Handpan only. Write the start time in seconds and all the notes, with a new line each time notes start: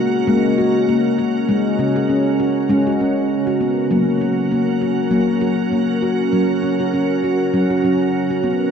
Already playing: C#3 F#4
0.27 G#3 A#3
0.58 F#4
0.89 A#3
1.18 F#4
1.49 G#3
1.79 C#3 C#4
1.96 G#4
2.09 C#4
2.40 F#4
2.69 G#3 C#4
2.87 F#4
3.01 C#4
3.47 F#4
3.61 B3
3.91 F#3 A#3
4.21 F#4
4.51 A#3
4.82 F#4
5.11 F#3 A#3
5.41 F#3 F#4
5.72 A#3
6.02 F#4
6.33 F#3
6.63 C#4
6.80 F#4
6.93 C#4
7.24 F#4
7.54 F#3 C#4
7.70 F#4
7.84 F#3 C#4
8.30 F#4
8.44 B3